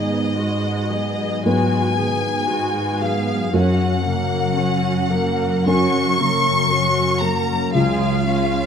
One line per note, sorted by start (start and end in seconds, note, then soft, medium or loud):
0.00 1.44 G#2 soft
0.00 3.48 G#2 soft
0.00 3.49 G#2 soft
0.00 1.98 D#3 soft
0.00 0.88 F#3 soft
0.00 0.37 B3 soft
0.00 0.36 G#4 soft
0.00 1.40 D#5 medium
0.35 0.90 G#3 soft
0.35 2.49 B3 soft
0.35 0.90 F#4 soft
0.90 3.01 F#3 soft
0.90 1.45 B3 soft
0.90 1.45 G#4 soft
1.45 3.57 G#2 soft
1.45 3.49 F#3 soft
1.45 1.95 G#3 soft
1.45 3.49 B3 soft
1.45 1.95 F#4 soft
1.45 3.50 B4 soft
1.45 3.02 G#5 medium
1.99 3.58 D#3 soft
1.99 2.50 B3 soft
1.99 2.50 G#4 soft
2.49 3.01 G#3 soft
2.49 3.57 B3 soft
2.49 3.01 F#4 soft
3.01 5.09 F#3 soft
3.01 3.53 B3 soft
3.01 3.53 G#4 soft
3.01 3.53 F5 medium
3.52 5.65 F#2 medium
3.52 7.74 F#2 medium
3.52 7.71 F#2 medium
3.52 4.01 C#4 soft
3.52 4.01 F#4 soft
3.52 5.67 F#5 medium
4.04 6.18 C#3 soft
4.04 4.57 A#3 soft
4.04 4.57 A#4 soft
4.56 6.71 C#4 soft
4.56 5.11 C#4 soft
4.56 5.11 F#4 soft
5.10 7.22 F#3 soft
5.10 5.66 A#3 soft
5.10 5.66 A#4 soft
5.66 7.79 F#2 soft
5.66 7.70 F#3 soft
5.66 7.71 C#4 soft
5.66 6.17 C#4 soft
5.66 6.17 F#4 soft
5.66 7.71 A#4 soft
5.66 7.20 C#6 medium
6.19 7.73 C#3 soft
6.19 6.71 A#3 soft
6.19 6.71 A#4 soft
6.72 7.23 C#4 soft
6.72 8.66 C#4 soft
6.72 7.23 F#4 soft
7.21 7.79 F#3 soft
7.21 7.74 A#3 soft
7.21 7.74 A#4 soft
7.21 7.74 A#5 medium
7.73 8.66 C#2 medium
7.73 8.66 C#3 soft
7.73 8.23 F4 soft
7.73 8.23 G#4 soft
7.73 8.66 F5 medium
8.27 8.66 G#3 soft
8.27 8.66 C#4 soft
8.27 8.66 F4 soft